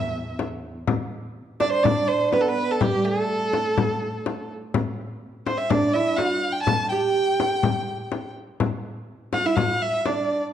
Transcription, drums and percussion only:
0.39 frame drum
0.88 frame drum
1.60 frame drum
1.85 frame drum
2.33 frame drum
2.81 frame drum
3.53 frame drum
3.78 frame drum
4.26 frame drum
4.74 frame drum
5.47 frame drum
5.70 frame drum
6.18 frame drum
6.67 frame drum
7.40 frame drum
7.63 frame drum
8.12 frame drum
8.60 frame drum
9.33 frame drum
9.57 frame drum
10.06 frame drum

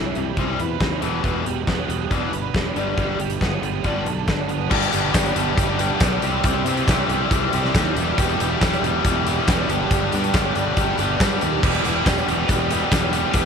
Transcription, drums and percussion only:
0.15 closed hi-hat
0.37 kick, closed hi-hat
0.60 closed hi-hat
0.80 kick, snare, closed hi-hat
1.02 closed hi-hat
1.24 kick, closed hi-hat
1.46 closed hi-hat
1.67 kick, snare, closed hi-hat
1.90 closed hi-hat
2.11 kick, closed hi-hat
2.33 closed hi-hat
2.54 kick, snare, closed hi-hat
2.76 closed hi-hat
2.98 kick, closed hi-hat
3.20 closed hi-hat
3.30 closed hi-hat
3.41 kick, snare, closed hi-hat
3.63 closed hi-hat
3.84 kick, closed hi-hat
4.06 closed hi-hat
4.28 kick, snare, closed hi-hat
4.49 closed hi-hat
4.71 kick, crash
4.82 closed hi-hat
4.92 closed hi-hat, tambourine
5.14 kick, snare, closed hi-hat, tambourine
5.26 closed hi-hat
5.36 closed hi-hat
5.58 kick, closed hi-hat, tambourine
5.79 closed hi-hat, tambourine
6.00 kick, snare, closed hi-hat, tambourine
6.22 closed hi-hat, tambourine
6.44 kick, closed hi-hat
6.66 closed hi-hat, tambourine
6.77 closed hi-hat
6.88 kick, snare, closed hi-hat, tambourine
7.09 closed hi-hat, tambourine
7.31 kick, closed hi-hat, tambourine
7.53 closed hi-hat
7.65 snare
7.75 kick, snare, closed hi-hat, tambourine
7.97 closed hi-hat, tambourine
8.18 kick, closed hi-hat
8.40 closed hi-hat, tambourine
8.61 kick, snare, closed hi-hat, tambourine
8.73 closed hi-hat
8.84 closed hi-hat, tambourine
9.05 kick, closed hi-hat, tambourine
9.27 closed hi-hat, tambourine
9.48 kick, snare, closed hi-hat, tambourine
9.69 closed hi-hat, tambourine
9.91 kick, closed hi-hat, tambourine
10.12 closed hi-hat, tambourine
10.24 closed hi-hat
10.34 kick, snare, closed hi-hat, tambourine
10.55 closed hi-hat, tambourine
10.77 kick, closed hi-hat, tambourine
10.98 closed hi-hat, tambourine
11.20 kick, snare, closed hi-hat, tambourine
11.41 closed hi-hat, tambourine
11.63 kick, crash
11.75 closed hi-hat
11.84 closed hi-hat, tambourine
12.06 kick, snare, closed hi-hat, tambourine
12.18 closed hi-hat
12.28 closed hi-hat, tambourine
12.48 kick, closed hi-hat, tambourine
12.70 closed hi-hat, tambourine
12.92 kick, snare, closed hi-hat, tambourine
13.13 closed hi-hat, tambourine
13.34 kick, closed hi-hat

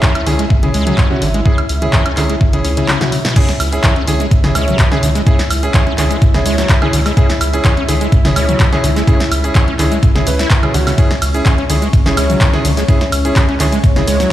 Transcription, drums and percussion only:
0.03 kick, clap
0.15 closed hi-hat, high woodblock
0.27 open hi-hat
0.39 closed hi-hat
0.50 kick
0.63 closed hi-hat, mid tom
0.74 open hi-hat
0.87 closed hi-hat, mid tom
0.98 kick, clap
1.10 mid tom
1.22 open hi-hat
1.34 closed hi-hat
1.46 kick
1.58 closed hi-hat, high woodblock
1.69 open hi-hat
1.82 closed hi-hat, mid tom
1.93 kick, clap
2.06 closed hi-hat, high woodblock
2.17 clap, open hi-hat
2.30 closed hi-hat
2.41 kick
2.53 closed hi-hat
2.65 open hi-hat
2.77 closed hi-hat
2.88 snare, clap
3.01 snare, closed hi-hat, mid tom
3.12 open hi-hat
3.25 snare, open hi-hat
3.36 kick, closed hi-hat, crash, shaker
3.49 snare, closed hi-hat
3.60 open hi-hat, high woodblock, shaker
3.72 closed hi-hat, shaker
3.84 kick, clap, closed hi-hat, shaker
3.96 closed hi-hat
4.07 open hi-hat, shaker
4.20 closed hi-hat, shaker
4.31 kick, closed hi-hat, shaker
4.44 snare, closed hi-hat, mid tom
4.55 open hi-hat, high woodblock, shaker
4.68 closed hi-hat, mid tom, shaker
4.79 kick, clap, closed hi-hat, shaker
4.92 snare, closed hi-hat, mid tom
5.03 open hi-hat, shaker
5.15 snare, closed hi-hat, shaker
5.27 kick, closed hi-hat, shaker
5.39 snare, closed hi-hat
5.50 open hi-hat, high woodblock, shaker
5.63 closed hi-hat, shaker
5.74 kick, clap, closed hi-hat, shaker
5.87 closed hi-hat
5.98 clap, open hi-hat, shaker
6.11 closed hi-hat, shaker
6.22 kick, closed hi-hat, shaker
6.34 snare, closed hi-hat
6.46 open hi-hat, shaker
6.58 snare, closed hi-hat, shaker
6.69 kick, clap, closed hi-hat, shaker
6.82 closed hi-hat, mid tom, high woodblock
6.93 open hi-hat, shaker
7.06 snare, open hi-hat, high woodblock, shaker
7.17 kick, closed hi-hat, shaker
7.30 snare, closed hi-hat
7.41 open hi-hat, high woodblock, shaker
7.53 closed hi-hat, shaker
7.65 kick, clap, closed hi-hat, shaker
7.77 closed hi-hat
7.89 open hi-hat, shaker
8.01 closed hi-hat, shaker
8.12 kick, closed hi-hat, shaker
8.25 snare, closed hi-hat, mid tom
8.36 open hi-hat, high woodblock, shaker
8.49 closed hi-hat, mid tom, shaker
8.60 kick, clap, closed hi-hat, shaker
8.73 snare, closed hi-hat, mid tom
8.84 open hi-hat, shaker
8.96 snare, closed hi-hat, shaker
9.08 kick, closed hi-hat, shaker
9.20 snare, closed hi-hat
9.32 open hi-hat, high woodblock, shaker
9.44 closed hi-hat, shaker
9.55 kick, clap, closed hi-hat, shaker
9.68 closed hi-hat
9.79 clap, open hi-hat, shaker
9.92 closed hi-hat, shaker
10.03 kick, closed hi-hat, shaker
10.16 snare, closed hi-hat
10.27 open hi-hat, shaker
10.39 snare, closed hi-hat, shaker
10.50 kick, clap, closed hi-hat, shaker
10.63 closed hi-hat, mid tom, high woodblock
10.74 open hi-hat, shaker
10.87 snare, open hi-hat, high woodblock, shaker
10.98 kick, closed hi-hat, ride, shaker
11.11 snare, closed hi-hat
11.22 open hi-hat, ride, high woodblock, shaker
11.34 closed hi-hat, shaker
11.46 kick, clap, closed hi-hat, ride, shaker
11.58 closed hi-hat
11.70 open hi-hat, ride, shaker
11.82 closed hi-hat, shaker
11.93 kick, closed hi-hat, ride, shaker
12.06 snare, closed hi-hat, mid tom
12.17 open hi-hat, ride, high woodblock, shaker
12.30 closed hi-hat, mid tom, shaker
12.41 kick, clap, closed hi-hat, ride, shaker
12.54 snare, closed hi-hat, mid tom
12.65 open hi-hat, ride, shaker
12.77 snare, closed hi-hat, shaker
12.88 kick, closed hi-hat, ride, shaker
13.01 snare, closed hi-hat
13.12 open hi-hat, ride, high woodblock, shaker
13.25 closed hi-hat, shaker
13.36 kick, clap, closed hi-hat, ride, shaker
13.49 closed hi-hat
13.60 clap, open hi-hat, ride, shaker
13.72 closed hi-hat, shaker
13.84 kick, closed hi-hat, ride, shaker
13.96 snare, closed hi-hat
14.08 open hi-hat, ride, shaker
14.20 snare, closed hi-hat, shaker

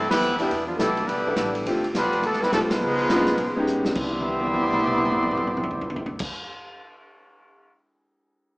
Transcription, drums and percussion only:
0.11 snare, ride
0.22 hi-hat pedal
0.39 ride
0.51 kick, ride
0.79 kick, snare, hi-hat pedal, ride
0.97 ride
1.09 kick, ride
1.36 kick, snare, hi-hat pedal, ride
1.55 ride
1.66 kick, ride
1.84 ride
1.95 kick, snare, hi-hat pedal, ride
2.13 ride
2.23 kick, ride
2.33 snare
2.43 snare
2.52 kick, snare, hi-hat pedal, ride
2.70 snare, ride
2.99 ride
3.09 kick, snare, hi-hat pedal, ride
3.26 snare, ride
3.38 kick, ride
3.67 hi-hat pedal
3.85 snare
3.95 kick, crash
4.13 high tom
4.20 high tom
4.28 high tom
4.40 high tom
4.47 high tom
4.54 high tom
4.64 mid tom
4.73 mid tom
4.79 mid tom
4.87 mid tom
4.98 mid tom
5.05 mid tom
5.12 mid tom
5.23 mid tom
5.31 mid tom
5.37 mid tom
5.47 mid tom
5.57 mid tom
5.64 floor tom
5.71 floor tom
5.81 floor tom
5.90 floor tom
5.96 floor tom
6.06 floor tom
6.19 kick, crash

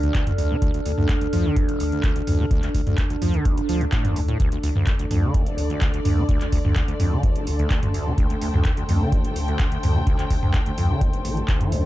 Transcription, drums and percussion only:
0.03 closed hi-hat
0.14 kick, clap, closed hi-hat
0.27 closed hi-hat, mid tom
0.38 open hi-hat
0.62 kick, closed hi-hat
0.74 closed hi-hat
0.86 open hi-hat
0.98 mid tom
1.09 kick, clap, closed hi-hat
1.21 closed hi-hat
1.33 mid tom, open hi-hat
1.56 kick, closed hi-hat
1.69 closed hi-hat
1.80 open hi-hat
1.92 closed hi-hat
2.03 kick, clap, closed hi-hat
2.16 closed hi-hat
2.27 mid tom, open hi-hat
2.51 kick, closed hi-hat
2.63 clap, closed hi-hat
2.75 kick, open hi-hat
2.87 closed hi-hat, mid tom
2.98 kick, clap, closed hi-hat
3.10 closed hi-hat
3.22 mid tom, open hi-hat
3.34 closed hi-hat
3.45 kick, closed hi-hat
3.57 closed hi-hat
3.69 open hi-hat
3.81 closed hi-hat
3.92 kick, clap, closed hi-hat
4.05 closed hi-hat, mid tom
4.16 open hi-hat
4.28 closed hi-hat
4.40 kick, closed hi-hat
4.52 closed hi-hat
4.63 open hi-hat
4.76 mid tom
4.87 kick, clap, closed hi-hat
4.99 closed hi-hat
5.11 mid tom, open hi-hat
5.34 kick, closed hi-hat
5.46 closed hi-hat
5.58 open hi-hat
5.70 closed hi-hat
5.81 kick, clap, closed hi-hat
5.94 closed hi-hat
6.05 mid tom, open hi-hat
6.29 kick, closed hi-hat
6.41 clap, closed hi-hat
6.52 kick, open hi-hat
6.65 mid tom
6.76 kick, clap, closed hi-hat
6.88 closed hi-hat
7.00 mid tom, open hi-hat
7.23 kick, closed hi-hat
7.36 closed hi-hat
7.47 open hi-hat
7.59 closed hi-hat
7.70 kick, clap, closed hi-hat
7.83 closed hi-hat, mid tom
7.94 open hi-hat
8.18 kick, closed hi-hat
8.30 closed hi-hat
8.41 open hi-hat
8.54 mid tom
8.65 kick, clap, closed hi-hat
8.77 closed hi-hat
8.89 mid tom, open hi-hat
9.12 kick, closed hi-hat
9.25 closed hi-hat
9.36 open hi-hat
9.48 closed hi-hat
9.59 kick, clap, closed hi-hat
9.72 closed hi-hat
9.83 mid tom, open hi-hat
10.07 kick, closed hi-hat
10.19 clap, closed hi-hat
10.30 kick, open hi-hat
10.43 mid tom
10.54 kick, clap, closed hi-hat
10.66 closed hi-hat
10.78 mid tom, open hi-hat
11.01 kick, closed hi-hat
11.13 closed hi-hat
11.25 open hi-hat
11.37 closed hi-hat
11.48 kick, clap, closed hi-hat
11.61 closed hi-hat, mid tom
11.72 open hi-hat

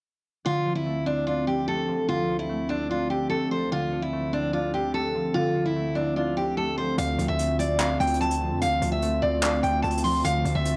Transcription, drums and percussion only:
6.98 closed hi-hat
7.19 closed hi-hat
7.39 closed hi-hat
7.59 closed hi-hat
7.80 clap, closed hi-hat
8.00 closed hi-hat
8.07 closed hi-hat
8.14 closed hi-hat
8.21 closed hi-hat
8.31 closed hi-hat
8.61 closed hi-hat
8.82 closed hi-hat
9.02 closed hi-hat
9.43 clap, closed hi-hat
9.63 closed hi-hat
9.84 closed hi-hat
9.91 closed hi-hat
9.97 closed hi-hat
10.04 open hi-hat
10.25 closed hi-hat
10.45 closed hi-hat
10.65 closed hi-hat

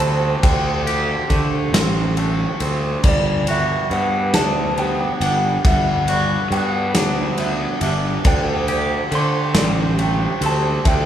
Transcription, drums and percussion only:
0.00 ride
0.43 kick, ride
0.87 ride
1.30 kick, ride
1.74 snare, ride
2.17 ride
2.60 ride
3.03 kick, crash
3.47 ride
3.91 ride
4.34 snare, ride
4.78 ride
5.21 ride
5.65 kick, ride
6.08 ride
6.52 ride
6.95 snare, ride
7.38 ride
7.81 ride
8.25 kick, ride
8.68 ride
9.12 ride
9.55 snare, ride
9.99 ride
10.42 ride
10.85 kick, ride

